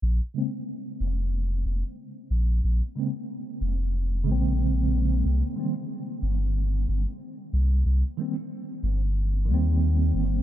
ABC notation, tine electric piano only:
X:1
M:4/4
L:1/8
Q:"Swing 16ths" 1/4=92
K:Bbdor
V:1 name="Tine electric piano"
z [D,A,B,C] z6 | z [D,A,B,C] z3 [D,A,B,C]3 | z [E,G,B,C] z6 | z [E,G,B,C] z3 [E,G,B,C]3 |]